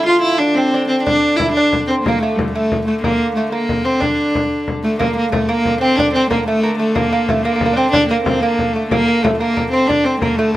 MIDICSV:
0, 0, Header, 1, 5, 480
1, 0, Start_track
1, 0, Tempo, 326975
1, 123, Time_signature, 6, 3, 24, 8
1, 15512, End_track
2, 0, Start_track
2, 0, Title_t, "Lute"
2, 0, Program_c, 0, 24
2, 123, Note_on_c, 0, 65, 77
2, 589, Note_off_c, 0, 65, 0
2, 594, Note_on_c, 0, 62, 71
2, 837, Note_on_c, 0, 60, 77
2, 847, Note_off_c, 0, 62, 0
2, 1086, Note_on_c, 0, 62, 74
2, 1089, Note_off_c, 0, 60, 0
2, 1316, Note_on_c, 0, 60, 62
2, 1333, Note_off_c, 0, 62, 0
2, 1562, Note_on_c, 0, 62, 77
2, 1569, Note_off_c, 0, 60, 0
2, 2011, Note_off_c, 0, 62, 0
2, 2052, Note_on_c, 0, 64, 79
2, 2297, Note_off_c, 0, 64, 0
2, 2303, Note_on_c, 0, 62, 83
2, 2791, Note_off_c, 0, 62, 0
2, 2795, Note_on_c, 0, 60, 68
2, 3029, Note_off_c, 0, 60, 0
2, 3054, Note_on_c, 0, 58, 75
2, 3256, Note_off_c, 0, 58, 0
2, 3269, Note_on_c, 0, 57, 76
2, 3733, Note_off_c, 0, 57, 0
2, 3750, Note_on_c, 0, 57, 76
2, 4211, Note_off_c, 0, 57, 0
2, 4228, Note_on_c, 0, 57, 64
2, 4462, Note_off_c, 0, 57, 0
2, 4468, Note_on_c, 0, 58, 71
2, 4940, Note_off_c, 0, 58, 0
2, 4946, Note_on_c, 0, 57, 66
2, 5165, Note_off_c, 0, 57, 0
2, 5171, Note_on_c, 0, 58, 73
2, 5649, Note_off_c, 0, 58, 0
2, 5655, Note_on_c, 0, 60, 63
2, 5877, Note_on_c, 0, 62, 70
2, 5901, Note_off_c, 0, 60, 0
2, 6786, Note_off_c, 0, 62, 0
2, 7111, Note_on_c, 0, 57, 58
2, 7325, Note_off_c, 0, 57, 0
2, 7331, Note_on_c, 0, 58, 85
2, 7807, Note_off_c, 0, 58, 0
2, 7813, Note_on_c, 0, 57, 82
2, 8049, Note_off_c, 0, 57, 0
2, 8055, Note_on_c, 0, 58, 91
2, 8525, Note_off_c, 0, 58, 0
2, 8531, Note_on_c, 0, 60, 78
2, 8779, Note_off_c, 0, 60, 0
2, 8803, Note_on_c, 0, 62, 97
2, 9035, Note_off_c, 0, 62, 0
2, 9035, Note_on_c, 0, 60, 89
2, 9251, Note_off_c, 0, 60, 0
2, 9257, Note_on_c, 0, 58, 80
2, 9502, Note_off_c, 0, 58, 0
2, 9508, Note_on_c, 0, 57, 89
2, 9732, Note_off_c, 0, 57, 0
2, 9738, Note_on_c, 0, 58, 84
2, 9967, Note_off_c, 0, 58, 0
2, 9973, Note_on_c, 0, 57, 68
2, 10200, Note_off_c, 0, 57, 0
2, 10206, Note_on_c, 0, 58, 82
2, 10442, Note_off_c, 0, 58, 0
2, 10459, Note_on_c, 0, 58, 83
2, 10703, Note_off_c, 0, 58, 0
2, 10710, Note_on_c, 0, 57, 75
2, 10933, Note_off_c, 0, 57, 0
2, 10939, Note_on_c, 0, 58, 89
2, 11077, Note_off_c, 0, 58, 0
2, 11094, Note_on_c, 0, 58, 65
2, 11222, Note_off_c, 0, 58, 0
2, 11240, Note_on_c, 0, 58, 75
2, 11351, Note_on_c, 0, 62, 59
2, 11403, Note_off_c, 0, 58, 0
2, 11409, Note_on_c, 0, 60, 84
2, 11411, Note_off_c, 0, 62, 0
2, 11646, Note_on_c, 0, 62, 88
2, 11658, Note_off_c, 0, 60, 0
2, 11896, Note_off_c, 0, 62, 0
2, 11903, Note_on_c, 0, 58, 84
2, 12353, Note_off_c, 0, 58, 0
2, 12371, Note_on_c, 0, 58, 83
2, 12851, Note_off_c, 0, 58, 0
2, 12857, Note_on_c, 0, 57, 61
2, 13087, Note_off_c, 0, 57, 0
2, 13093, Note_on_c, 0, 58, 87
2, 13312, Note_off_c, 0, 58, 0
2, 13330, Note_on_c, 0, 58, 75
2, 13560, Note_off_c, 0, 58, 0
2, 13566, Note_on_c, 0, 57, 75
2, 13800, Note_off_c, 0, 57, 0
2, 13806, Note_on_c, 0, 58, 81
2, 14025, Note_off_c, 0, 58, 0
2, 14043, Note_on_c, 0, 58, 71
2, 14281, Note_off_c, 0, 58, 0
2, 14287, Note_on_c, 0, 60, 67
2, 14510, Note_off_c, 0, 60, 0
2, 14523, Note_on_c, 0, 62, 87
2, 14768, Note_on_c, 0, 60, 72
2, 14772, Note_off_c, 0, 62, 0
2, 15002, Note_off_c, 0, 60, 0
2, 15008, Note_on_c, 0, 58, 71
2, 15243, Note_off_c, 0, 58, 0
2, 15249, Note_on_c, 0, 57, 80
2, 15473, Note_off_c, 0, 57, 0
2, 15512, End_track
3, 0, Start_track
3, 0, Title_t, "Viola da gamba"
3, 0, Program_c, 1, 42
3, 86, Note_on_c, 1, 65, 91
3, 315, Note_off_c, 1, 65, 0
3, 324, Note_on_c, 1, 64, 94
3, 565, Note_on_c, 1, 62, 81
3, 587, Note_off_c, 1, 64, 0
3, 802, Note_on_c, 1, 60, 90
3, 824, Note_off_c, 1, 62, 0
3, 1279, Note_off_c, 1, 60, 0
3, 1288, Note_on_c, 1, 60, 86
3, 1504, Note_off_c, 1, 60, 0
3, 1513, Note_on_c, 1, 62, 99
3, 2000, Note_on_c, 1, 64, 85
3, 2022, Note_off_c, 1, 62, 0
3, 2229, Note_off_c, 1, 64, 0
3, 2238, Note_on_c, 1, 62, 88
3, 2708, Note_off_c, 1, 62, 0
3, 2748, Note_on_c, 1, 60, 86
3, 2861, Note_off_c, 1, 60, 0
3, 2979, Note_on_c, 1, 58, 85
3, 3212, Note_on_c, 1, 57, 77
3, 3234, Note_off_c, 1, 58, 0
3, 3461, Note_on_c, 1, 55, 68
3, 3483, Note_off_c, 1, 57, 0
3, 3697, Note_off_c, 1, 55, 0
3, 3706, Note_on_c, 1, 57, 78
3, 4164, Note_off_c, 1, 57, 0
3, 4190, Note_on_c, 1, 57, 75
3, 4423, Note_off_c, 1, 57, 0
3, 4439, Note_on_c, 1, 58, 91
3, 4892, Note_off_c, 1, 58, 0
3, 4919, Note_on_c, 1, 57, 64
3, 5148, Note_off_c, 1, 57, 0
3, 5159, Note_on_c, 1, 58, 81
3, 5643, Note_on_c, 1, 60, 78
3, 5665, Note_off_c, 1, 58, 0
3, 5885, Note_on_c, 1, 62, 76
3, 5907, Note_off_c, 1, 60, 0
3, 6849, Note_off_c, 1, 62, 0
3, 7092, Note_on_c, 1, 57, 85
3, 7315, Note_off_c, 1, 57, 0
3, 7333, Note_on_c, 1, 58, 85
3, 7556, Note_off_c, 1, 58, 0
3, 7583, Note_on_c, 1, 58, 84
3, 7802, Note_off_c, 1, 58, 0
3, 7819, Note_on_c, 1, 57, 78
3, 8075, Note_on_c, 1, 58, 98
3, 8097, Note_off_c, 1, 57, 0
3, 8523, Note_off_c, 1, 58, 0
3, 8531, Note_on_c, 1, 60, 96
3, 8750, Note_on_c, 1, 62, 101
3, 8772, Note_off_c, 1, 60, 0
3, 8996, Note_off_c, 1, 62, 0
3, 9005, Note_on_c, 1, 60, 89
3, 9232, Note_off_c, 1, 60, 0
3, 9245, Note_on_c, 1, 58, 80
3, 9472, Note_off_c, 1, 58, 0
3, 9501, Note_on_c, 1, 57, 92
3, 9943, Note_off_c, 1, 57, 0
3, 9956, Note_on_c, 1, 57, 89
3, 10206, Note_on_c, 1, 58, 89
3, 10228, Note_off_c, 1, 57, 0
3, 10687, Note_on_c, 1, 57, 77
3, 10709, Note_off_c, 1, 58, 0
3, 10901, Note_on_c, 1, 58, 89
3, 10923, Note_off_c, 1, 57, 0
3, 11398, Note_on_c, 1, 60, 89
3, 11420, Note_off_c, 1, 58, 0
3, 11610, Note_off_c, 1, 60, 0
3, 11619, Note_on_c, 1, 62, 103
3, 11857, Note_off_c, 1, 62, 0
3, 11872, Note_on_c, 1, 58, 82
3, 12079, Note_off_c, 1, 58, 0
3, 12088, Note_on_c, 1, 60, 78
3, 12337, Note_on_c, 1, 58, 85
3, 12359, Note_off_c, 1, 60, 0
3, 12807, Note_on_c, 1, 57, 75
3, 12829, Note_off_c, 1, 58, 0
3, 13057, Note_off_c, 1, 57, 0
3, 13065, Note_on_c, 1, 58, 96
3, 13544, Note_on_c, 1, 57, 79
3, 13566, Note_off_c, 1, 58, 0
3, 13771, Note_off_c, 1, 57, 0
3, 13780, Note_on_c, 1, 58, 90
3, 14239, Note_off_c, 1, 58, 0
3, 14255, Note_on_c, 1, 60, 79
3, 14488, Note_on_c, 1, 62, 87
3, 14510, Note_off_c, 1, 60, 0
3, 14742, Note_on_c, 1, 60, 82
3, 14764, Note_off_c, 1, 62, 0
3, 14971, Note_off_c, 1, 60, 0
3, 14980, Note_on_c, 1, 58, 79
3, 15208, Note_on_c, 1, 57, 88
3, 15230, Note_off_c, 1, 58, 0
3, 15512, Note_off_c, 1, 57, 0
3, 15512, End_track
4, 0, Start_track
4, 0, Title_t, "Hurdy-gurdy"
4, 0, Program_c, 2, 110
4, 0, Note_on_c, 2, 50, 58
4, 1608, Note_off_c, 2, 50, 0
4, 1608, Note_on_c, 2, 50, 57
4, 7346, Note_off_c, 2, 50, 0
4, 7346, Note_on_c, 2, 50, 70
4, 13092, Note_off_c, 2, 50, 0
4, 13092, Note_on_c, 2, 50, 71
4, 15512, Note_off_c, 2, 50, 0
4, 15512, End_track
5, 0, Start_track
5, 0, Title_t, "Frame drum"
5, 1569, Note_on_c, 9, 64, 73
5, 1716, Note_off_c, 9, 64, 0
5, 2051, Note_on_c, 9, 64, 81
5, 2198, Note_off_c, 9, 64, 0
5, 2535, Note_on_c, 9, 64, 77
5, 2682, Note_off_c, 9, 64, 0
5, 3023, Note_on_c, 9, 64, 89
5, 3170, Note_off_c, 9, 64, 0
5, 3504, Note_on_c, 9, 64, 88
5, 3651, Note_off_c, 9, 64, 0
5, 3989, Note_on_c, 9, 64, 80
5, 4136, Note_off_c, 9, 64, 0
5, 4461, Note_on_c, 9, 64, 85
5, 4608, Note_off_c, 9, 64, 0
5, 5420, Note_on_c, 9, 64, 77
5, 5567, Note_off_c, 9, 64, 0
5, 5899, Note_on_c, 9, 64, 77
5, 6045, Note_off_c, 9, 64, 0
5, 6151, Note_on_c, 9, 64, 22
5, 6297, Note_off_c, 9, 64, 0
5, 6390, Note_on_c, 9, 64, 77
5, 6537, Note_off_c, 9, 64, 0
5, 6866, Note_on_c, 9, 64, 70
5, 7013, Note_off_c, 9, 64, 0
5, 7347, Note_on_c, 9, 64, 95
5, 7494, Note_off_c, 9, 64, 0
5, 7824, Note_on_c, 9, 64, 93
5, 7970, Note_off_c, 9, 64, 0
5, 8300, Note_on_c, 9, 64, 70
5, 8447, Note_off_c, 9, 64, 0
5, 8787, Note_on_c, 9, 64, 77
5, 8934, Note_off_c, 9, 64, 0
5, 9261, Note_on_c, 9, 64, 80
5, 9407, Note_off_c, 9, 64, 0
5, 10213, Note_on_c, 9, 64, 88
5, 10360, Note_off_c, 9, 64, 0
5, 10696, Note_on_c, 9, 64, 95
5, 10843, Note_off_c, 9, 64, 0
5, 11168, Note_on_c, 9, 64, 86
5, 11315, Note_off_c, 9, 64, 0
5, 11649, Note_on_c, 9, 64, 91
5, 11796, Note_off_c, 9, 64, 0
5, 12126, Note_on_c, 9, 64, 102
5, 12273, Note_off_c, 9, 64, 0
5, 12368, Note_on_c, 9, 64, 27
5, 12514, Note_off_c, 9, 64, 0
5, 12608, Note_on_c, 9, 64, 79
5, 12755, Note_off_c, 9, 64, 0
5, 13084, Note_on_c, 9, 64, 96
5, 13231, Note_off_c, 9, 64, 0
5, 13573, Note_on_c, 9, 64, 102
5, 13720, Note_off_c, 9, 64, 0
5, 14051, Note_on_c, 9, 64, 74
5, 14197, Note_off_c, 9, 64, 0
5, 14530, Note_on_c, 9, 64, 79
5, 14676, Note_off_c, 9, 64, 0
5, 14999, Note_on_c, 9, 64, 91
5, 15146, Note_off_c, 9, 64, 0
5, 15512, End_track
0, 0, End_of_file